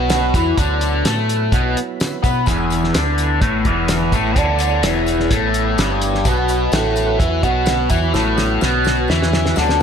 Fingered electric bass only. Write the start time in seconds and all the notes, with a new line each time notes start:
Already playing: B1
0.34 E2
0.58 D2
1.05 A2
1.52 B1
2.24 B2
2.47 E1
2.95 D2
3.41 A1
3.65 E1
4.12 A1
4.36 D2
4.82 E1
5.30 A1
5.78 G1
6.26 B1
6.72 A1
7.20 E2
7.44 B1
7.90 E2
8.14 A1
8.62 B1
9.09 E2
9.57 D2